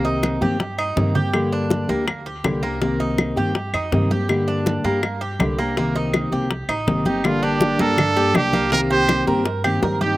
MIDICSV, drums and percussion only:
0, 0, Header, 1, 2, 480
1, 0, Start_track
1, 0, Key_signature, -2, "minor"
1, 0, Tempo, 369004
1, 1743, Time_signature, 4, 2, 24, 8
1, 13232, End_track
2, 0, Start_track
2, 0, Title_t, "Drums"
2, 62, Note_on_c, 9, 60, 30
2, 72, Note_on_c, 9, 63, 33
2, 192, Note_off_c, 9, 60, 0
2, 203, Note_off_c, 9, 63, 0
2, 299, Note_on_c, 9, 60, 56
2, 302, Note_on_c, 9, 75, 64
2, 305, Note_on_c, 9, 63, 95
2, 429, Note_off_c, 9, 60, 0
2, 432, Note_off_c, 9, 75, 0
2, 435, Note_off_c, 9, 63, 0
2, 540, Note_on_c, 9, 60, 33
2, 547, Note_on_c, 9, 63, 78
2, 670, Note_off_c, 9, 60, 0
2, 677, Note_off_c, 9, 63, 0
2, 780, Note_on_c, 9, 60, 68
2, 782, Note_on_c, 9, 63, 66
2, 910, Note_off_c, 9, 60, 0
2, 912, Note_off_c, 9, 63, 0
2, 1024, Note_on_c, 9, 75, 65
2, 1154, Note_off_c, 9, 75, 0
2, 1261, Note_on_c, 9, 64, 81
2, 1262, Note_on_c, 9, 60, 65
2, 1262, Note_on_c, 9, 61, 77
2, 1391, Note_off_c, 9, 64, 0
2, 1392, Note_off_c, 9, 60, 0
2, 1392, Note_off_c, 9, 61, 0
2, 1501, Note_on_c, 9, 60, 32
2, 1503, Note_on_c, 9, 64, 100
2, 1631, Note_off_c, 9, 60, 0
2, 1633, Note_off_c, 9, 64, 0
2, 1737, Note_on_c, 9, 60, 62
2, 1740, Note_on_c, 9, 75, 64
2, 1867, Note_off_c, 9, 60, 0
2, 1871, Note_off_c, 9, 75, 0
2, 1985, Note_on_c, 9, 63, 32
2, 2115, Note_off_c, 9, 63, 0
2, 2217, Note_on_c, 9, 60, 59
2, 2226, Note_on_c, 9, 63, 87
2, 2347, Note_off_c, 9, 60, 0
2, 2356, Note_off_c, 9, 63, 0
2, 2465, Note_on_c, 9, 63, 33
2, 2595, Note_off_c, 9, 63, 0
2, 2700, Note_on_c, 9, 60, 63
2, 2703, Note_on_c, 9, 63, 35
2, 2706, Note_on_c, 9, 75, 64
2, 2831, Note_off_c, 9, 60, 0
2, 2834, Note_off_c, 9, 63, 0
2, 2836, Note_off_c, 9, 75, 0
2, 2949, Note_on_c, 9, 63, 32
2, 3080, Note_off_c, 9, 63, 0
2, 3179, Note_on_c, 9, 60, 69
2, 3179, Note_on_c, 9, 61, 82
2, 3183, Note_on_c, 9, 75, 63
2, 3184, Note_on_c, 9, 63, 70
2, 3309, Note_off_c, 9, 60, 0
2, 3309, Note_off_c, 9, 61, 0
2, 3313, Note_off_c, 9, 75, 0
2, 3314, Note_off_c, 9, 63, 0
2, 3422, Note_on_c, 9, 63, 36
2, 3552, Note_off_c, 9, 63, 0
2, 3663, Note_on_c, 9, 63, 35
2, 3664, Note_on_c, 9, 60, 66
2, 3794, Note_off_c, 9, 60, 0
2, 3794, Note_off_c, 9, 63, 0
2, 3900, Note_on_c, 9, 63, 34
2, 3903, Note_on_c, 9, 60, 30
2, 4030, Note_off_c, 9, 63, 0
2, 4033, Note_off_c, 9, 60, 0
2, 4140, Note_on_c, 9, 60, 57
2, 4141, Note_on_c, 9, 63, 96
2, 4143, Note_on_c, 9, 75, 66
2, 4270, Note_off_c, 9, 60, 0
2, 4271, Note_off_c, 9, 63, 0
2, 4274, Note_off_c, 9, 75, 0
2, 4381, Note_on_c, 9, 60, 33
2, 4382, Note_on_c, 9, 63, 34
2, 4512, Note_off_c, 9, 60, 0
2, 4512, Note_off_c, 9, 63, 0
2, 4619, Note_on_c, 9, 60, 66
2, 4625, Note_on_c, 9, 63, 34
2, 4749, Note_off_c, 9, 60, 0
2, 4755, Note_off_c, 9, 63, 0
2, 4861, Note_on_c, 9, 75, 70
2, 4871, Note_on_c, 9, 63, 31
2, 4992, Note_off_c, 9, 75, 0
2, 5001, Note_off_c, 9, 63, 0
2, 5104, Note_on_c, 9, 60, 61
2, 5104, Note_on_c, 9, 61, 77
2, 5106, Note_on_c, 9, 63, 74
2, 5234, Note_off_c, 9, 60, 0
2, 5234, Note_off_c, 9, 61, 0
2, 5236, Note_off_c, 9, 63, 0
2, 5341, Note_on_c, 9, 60, 34
2, 5348, Note_on_c, 9, 63, 87
2, 5471, Note_off_c, 9, 60, 0
2, 5478, Note_off_c, 9, 63, 0
2, 5584, Note_on_c, 9, 60, 60
2, 5586, Note_on_c, 9, 75, 62
2, 5594, Note_on_c, 9, 63, 35
2, 5714, Note_off_c, 9, 60, 0
2, 5716, Note_off_c, 9, 75, 0
2, 5724, Note_off_c, 9, 63, 0
2, 5837, Note_on_c, 9, 63, 36
2, 5967, Note_off_c, 9, 63, 0
2, 6064, Note_on_c, 9, 60, 56
2, 6072, Note_on_c, 9, 63, 97
2, 6194, Note_off_c, 9, 60, 0
2, 6202, Note_off_c, 9, 63, 0
2, 6313, Note_on_c, 9, 63, 35
2, 6443, Note_off_c, 9, 63, 0
2, 6542, Note_on_c, 9, 75, 65
2, 6544, Note_on_c, 9, 60, 63
2, 6554, Note_on_c, 9, 63, 35
2, 6673, Note_off_c, 9, 75, 0
2, 6674, Note_off_c, 9, 60, 0
2, 6684, Note_off_c, 9, 63, 0
2, 6791, Note_on_c, 9, 63, 33
2, 6921, Note_off_c, 9, 63, 0
2, 7021, Note_on_c, 9, 75, 63
2, 7026, Note_on_c, 9, 60, 65
2, 7026, Note_on_c, 9, 61, 78
2, 7030, Note_on_c, 9, 63, 71
2, 7151, Note_off_c, 9, 75, 0
2, 7156, Note_off_c, 9, 60, 0
2, 7156, Note_off_c, 9, 61, 0
2, 7161, Note_off_c, 9, 63, 0
2, 7270, Note_on_c, 9, 63, 31
2, 7400, Note_off_c, 9, 63, 0
2, 7507, Note_on_c, 9, 63, 35
2, 7508, Note_on_c, 9, 60, 63
2, 7637, Note_off_c, 9, 63, 0
2, 7639, Note_off_c, 9, 60, 0
2, 7746, Note_on_c, 9, 60, 30
2, 7750, Note_on_c, 9, 63, 35
2, 7876, Note_off_c, 9, 60, 0
2, 7880, Note_off_c, 9, 63, 0
2, 7981, Note_on_c, 9, 75, 70
2, 7986, Note_on_c, 9, 63, 93
2, 7987, Note_on_c, 9, 60, 54
2, 8111, Note_off_c, 9, 75, 0
2, 8116, Note_off_c, 9, 63, 0
2, 8117, Note_off_c, 9, 60, 0
2, 8224, Note_on_c, 9, 63, 33
2, 8225, Note_on_c, 9, 60, 37
2, 8354, Note_off_c, 9, 63, 0
2, 8355, Note_off_c, 9, 60, 0
2, 8463, Note_on_c, 9, 60, 64
2, 8469, Note_on_c, 9, 63, 36
2, 8593, Note_off_c, 9, 60, 0
2, 8599, Note_off_c, 9, 63, 0
2, 8700, Note_on_c, 9, 75, 70
2, 8704, Note_on_c, 9, 63, 31
2, 8830, Note_off_c, 9, 75, 0
2, 8834, Note_off_c, 9, 63, 0
2, 8941, Note_on_c, 9, 63, 78
2, 8946, Note_on_c, 9, 60, 61
2, 8946, Note_on_c, 9, 61, 80
2, 9071, Note_off_c, 9, 63, 0
2, 9076, Note_off_c, 9, 60, 0
2, 9076, Note_off_c, 9, 61, 0
2, 9177, Note_on_c, 9, 63, 85
2, 9186, Note_on_c, 9, 60, 34
2, 9307, Note_off_c, 9, 63, 0
2, 9316, Note_off_c, 9, 60, 0
2, 9420, Note_on_c, 9, 75, 66
2, 9424, Note_on_c, 9, 63, 36
2, 9428, Note_on_c, 9, 60, 68
2, 9550, Note_off_c, 9, 75, 0
2, 9554, Note_off_c, 9, 63, 0
2, 9558, Note_off_c, 9, 60, 0
2, 9659, Note_on_c, 9, 63, 38
2, 9789, Note_off_c, 9, 63, 0
2, 9893, Note_on_c, 9, 63, 89
2, 9907, Note_on_c, 9, 60, 58
2, 10024, Note_off_c, 9, 63, 0
2, 10037, Note_off_c, 9, 60, 0
2, 10137, Note_on_c, 9, 63, 97
2, 10146, Note_on_c, 9, 60, 39
2, 10267, Note_off_c, 9, 63, 0
2, 10276, Note_off_c, 9, 60, 0
2, 10378, Note_on_c, 9, 63, 34
2, 10378, Note_on_c, 9, 64, 86
2, 10382, Note_on_c, 9, 60, 65
2, 10384, Note_on_c, 9, 75, 69
2, 10508, Note_off_c, 9, 63, 0
2, 10508, Note_off_c, 9, 64, 0
2, 10512, Note_off_c, 9, 60, 0
2, 10514, Note_off_c, 9, 75, 0
2, 10621, Note_on_c, 9, 63, 36
2, 10625, Note_on_c, 9, 60, 35
2, 10751, Note_off_c, 9, 63, 0
2, 10755, Note_off_c, 9, 60, 0
2, 10854, Note_on_c, 9, 63, 80
2, 10858, Note_on_c, 9, 75, 66
2, 10862, Note_on_c, 9, 60, 36
2, 10862, Note_on_c, 9, 61, 85
2, 10984, Note_off_c, 9, 63, 0
2, 10988, Note_off_c, 9, 75, 0
2, 10992, Note_off_c, 9, 60, 0
2, 10992, Note_off_c, 9, 61, 0
2, 11097, Note_on_c, 9, 63, 89
2, 11103, Note_on_c, 9, 60, 33
2, 11227, Note_off_c, 9, 63, 0
2, 11234, Note_off_c, 9, 60, 0
2, 11341, Note_on_c, 9, 63, 35
2, 11343, Note_on_c, 9, 60, 64
2, 11471, Note_off_c, 9, 63, 0
2, 11473, Note_off_c, 9, 60, 0
2, 11585, Note_on_c, 9, 63, 38
2, 11715, Note_off_c, 9, 63, 0
2, 11818, Note_on_c, 9, 75, 67
2, 11823, Note_on_c, 9, 60, 58
2, 11823, Note_on_c, 9, 63, 102
2, 11948, Note_off_c, 9, 75, 0
2, 11953, Note_off_c, 9, 60, 0
2, 11953, Note_off_c, 9, 63, 0
2, 12061, Note_on_c, 9, 60, 35
2, 12065, Note_on_c, 9, 63, 38
2, 12191, Note_off_c, 9, 60, 0
2, 12195, Note_off_c, 9, 63, 0
2, 12299, Note_on_c, 9, 60, 67
2, 12305, Note_on_c, 9, 63, 34
2, 12430, Note_off_c, 9, 60, 0
2, 12435, Note_off_c, 9, 63, 0
2, 12541, Note_on_c, 9, 60, 34
2, 12545, Note_on_c, 9, 75, 66
2, 12550, Note_on_c, 9, 63, 34
2, 12671, Note_off_c, 9, 60, 0
2, 12675, Note_off_c, 9, 75, 0
2, 12681, Note_off_c, 9, 63, 0
2, 12781, Note_on_c, 9, 60, 36
2, 12781, Note_on_c, 9, 61, 89
2, 12783, Note_on_c, 9, 63, 77
2, 12911, Note_off_c, 9, 60, 0
2, 12911, Note_off_c, 9, 61, 0
2, 12914, Note_off_c, 9, 63, 0
2, 13022, Note_on_c, 9, 63, 75
2, 13024, Note_on_c, 9, 60, 35
2, 13152, Note_off_c, 9, 63, 0
2, 13154, Note_off_c, 9, 60, 0
2, 13232, End_track
0, 0, End_of_file